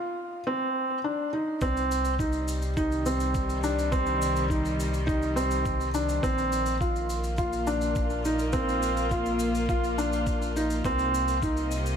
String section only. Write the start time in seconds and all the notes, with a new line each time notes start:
1.62 C3
2.19 G3
2.83 D#3
6.25 A#2
6.58 A#3
7.10 F4
10.86 C3
11.07 C4
11.53 D#5
11.65 G4